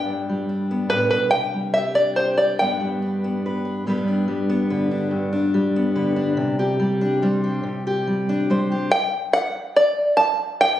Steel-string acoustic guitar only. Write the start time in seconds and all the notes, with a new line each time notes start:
Already playing: G3 B3 D4
0.06 G2
0.29 G3
0.49 D4
0.71 B3
0.91 A2
1.11 B2
1.32 C3
1.54 G3
1.76 G4
1.98 D4
2.19 G4
2.39 G4
2.60 G2 G3 B3 D4 B4
2.81 G3
3.02 D4
3.24 B3
3.46 B4
3.65 D4
3.86 G2 G3 B3 D4 B4
4.08 D4
4.28 G3
4.50 B3
4.70 D3 B4
4.91 D4
5.11 G2
5.33 D4
5.54 G3
5.76 B3
5.95 D3 B4
6.16 D4
6.37 C3
6.59 G4
6.80 G3
7.01 D4
7.22 G3 C5
7.44 G4
7.63 C3
7.87 G4
8.07 G3
8.29 D4
8.50 G3 C5
8.72 G4